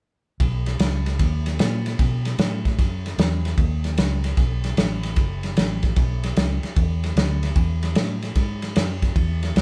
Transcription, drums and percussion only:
0.40 kick, ride
0.66 snare, ride
0.79 snare, ride
1.06 snare, ride
1.19 kick, snare, ride
1.46 snare, ride
1.59 snare, ride
1.86 snare, ride
1.99 kick, snare, ride
2.25 snare, ride
2.39 snare, ride
2.65 kick, snare, ride
2.79 kick, snare, ride
3.06 snare, ride
3.19 snare, ride
3.45 snare, ride
3.58 kick, ride
3.84 snare, ride
3.98 snare, ride
4.24 snare, ride
4.37 kick, snare, ride
4.64 snare, ride
4.77 snare, ride
5.03 snare, ride
5.16 kick, snare, ride
5.43 snare, ride
5.57 snare, ride
5.83 kick, snare, ride
5.96 kick, snare, ride
6.24 snare, ride
6.36 snare, ride
6.63 snare, ride
6.76 kick, ride
7.04 snare, ride
7.17 snare, ride
7.43 snare, ride
7.56 kick, ride
7.83 snare, ride
7.95 snare, ride
8.22 snare, ride
8.35 kick, snare, ride
8.62 snare, ride
8.76 snare, ride
9.02 kick, snare, ride
9.16 kick, ride
9.43 snare, ride
9.56 snare, ride

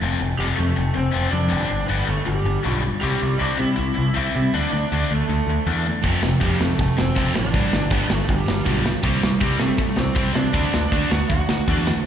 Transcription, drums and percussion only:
6.04 kick, open hi-hat
6.23 snare
6.41 kick, open hi-hat
6.61 snare
6.79 kick, open hi-hat
6.98 snare
7.16 kick, open hi-hat
7.36 snare
7.54 kick, open hi-hat
7.73 snare
7.90 kick, open hi-hat
8.10 snare
8.29 kick, open hi-hat
8.48 snare
8.66 kick, open hi-hat
8.86 snare
9.03 kick, open hi-hat
9.23 snare
9.41 kick, open hi-hat
9.60 snare
9.78 kick, open hi-hat
9.97 snare
10.16 kick, open hi-hat
10.35 snare
10.54 kick, open hi-hat
10.74 snare
10.92 kick, open hi-hat
11.12 snare
11.29 kick, open hi-hat
11.49 snare
11.67 kick, open hi-hat
11.87 snare

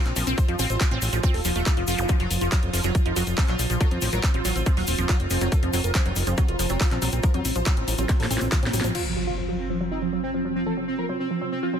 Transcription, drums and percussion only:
0.06 clap, closed hi-hat
0.16 open hi-hat, shaker
0.27 closed hi-hat, shaker
0.38 kick, closed hi-hat, shaker
0.48 closed hi-hat
0.59 open hi-hat, shaker
0.70 closed hi-hat, shaker
0.81 kick, clap, closed hi-hat, shaker
0.91 closed hi-hat
1.02 open hi-hat, shaker
1.13 closed hi-hat, shaker
1.23 kick, closed hi-hat, shaker
1.34 open hi-hat
1.45 open hi-hat, shaker
1.55 closed hi-hat, shaker
1.66 kick, clap, closed hi-hat, shaker
1.77 closed hi-hat
1.87 open hi-hat, shaker
1.98 closed hi-hat, shaker
2.08 kick, closed hi-hat, shaker
2.20 closed hi-hat
2.31 open hi-hat, shaker
2.41 closed hi-hat, shaker
2.52 kick, clap, closed hi-hat, shaker
2.63 closed hi-hat
2.73 open hi-hat, shaker
2.83 closed hi-hat, shaker
2.95 kick, closed hi-hat, shaker
3.06 closed hi-hat
3.16 open hi-hat, shaker
3.27 closed hi-hat, shaker
3.37 kick, clap, open hi-hat, shaker
3.48 clap, closed hi-hat
3.59 open hi-hat, shaker
3.70 closed hi-hat, shaker
3.81 kick, closed hi-hat, shaker
3.91 closed hi-hat
4.01 open hi-hat, shaker
4.12 closed hi-hat, shaker
4.23 kick, clap, closed hi-hat, shaker
4.34 closed hi-hat
4.45 open hi-hat, shaker
4.56 closed hi-hat, shaker
4.66 kick, closed hi-hat, shaker
4.77 open hi-hat
4.87 open hi-hat, shaker
4.98 closed hi-hat, shaker
5.09 kick, clap, closed hi-hat, shaker
5.20 closed hi-hat
5.30 open hi-hat, shaker
5.41 closed hi-hat, shaker
5.52 kick, closed hi-hat, shaker
5.63 closed hi-hat
5.73 open hi-hat, shaker
5.84 closed hi-hat, shaker
5.94 kick, clap, closed hi-hat, shaker
6.06 closed hi-hat
6.16 open hi-hat, shaker
6.27 closed hi-hat, shaker
6.37 kick, closed hi-hat, shaker
6.48 closed hi-hat
6.59 open hi-hat, shaker
6.69 closed hi-hat, shaker
6.81 kick, clap, open hi-hat, shaker
6.91 clap, closed hi-hat
7.02 open hi-hat, shaker
7.12 closed hi-hat, shaker
7.23 kick, closed hi-hat, shaker
7.34 closed hi-hat
7.45 open hi-hat, shaker
7.55 closed hi-hat, shaker
7.65 kick, clap, closed hi-hat, shaker
7.77 closed hi-hat
7.88 open hi-hat, shaker
7.98 closed hi-hat, shaker
8.09 kick, snare, closed hi-hat, shaker
8.20 snare, open hi-hat
8.31 open hi-hat, shaker
8.38 snare, closed hi-hat, shaker
8.52 kick, snare, clap, closed hi-hat, shaker
8.63 snare, closed hi-hat
8.73 open hi-hat, shaker
8.81 snare, closed hi-hat, shaker
8.95 crash

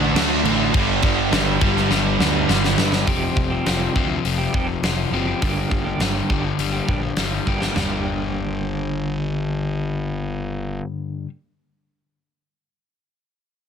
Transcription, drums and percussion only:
0.16 snare, crash
0.45 crash
0.74 kick, crash
1.02 kick, crash
1.33 snare, crash
1.61 kick, crash
1.77 snare
1.91 snare
2.20 snare
2.49 snare
2.64 snare
2.78 snare
2.92 snare
3.07 kick, open hi-hat
3.37 kick
3.66 snare, open hi-hat
3.96 kick
4.25 open hi-hat
4.54 kick
4.84 snare, open hi-hat
5.42 kick, open hi-hat
5.71 kick
6.00 snare, open hi-hat
6.30 kick
6.59 open hi-hat
6.89 kick
7.17 snare, open hi-hat
7.47 kick
7.62 snare
7.76 snare, floor tom

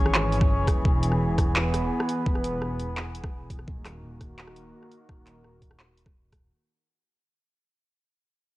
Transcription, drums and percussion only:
0.06 cross-stick
0.14 clap
0.32 closed hi-hat
0.41 kick, cross-stick
0.68 kick, cross-stick, closed hi-hat
0.85 kick
1.03 closed hi-hat
1.12 cross-stick
1.38 kick, cross-stick, closed hi-hat
1.56 clap
1.74 cross-stick, closed hi-hat
2.00 cross-stick
2.09 closed hi-hat
2.26 kick
2.35 cross-stick
2.44 closed hi-hat
2.62 cross-stick
2.79 closed hi-hat
2.97 cross-stick, clap
3.15 closed hi-hat
3.24 kick, cross-stick
3.50 kick, closed hi-hat
3.59 cross-stick
3.68 kick
3.85 cross-stick, clap, closed hi-hat
4.21 kick, cross-stick, closed hi-hat
4.39 clap
4.47 cross-stick
4.56 closed hi-hat
4.83 cross-stick
4.91 closed hi-hat
5.09 kick, cross-stick
5.27 clap, closed hi-hat
5.44 cross-stick
5.62 kick, closed hi-hat
5.71 cross-stick
5.79 clap
5.97 closed hi-hat
6.06 kick, cross-stick
6.32 kick, cross-stick, closed hi-hat

